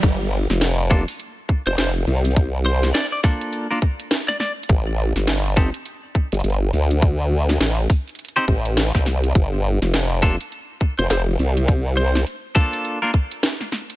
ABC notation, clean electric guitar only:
X:1
M:4/4
L:1/16
Q:"Swing 16ths" 1/4=103
K:Gm
V:1 name="Clean electric guitar"
z6 [B,DFA] z8 z | z6 [B,DFA]3 [B,DFB] z6 | z6 [CEGA] z8 z | z8 z [CEGc] z6 |
z6 [B,DFA] z8 z | z6 [B,DFA]3 [B,DFB] z6 |]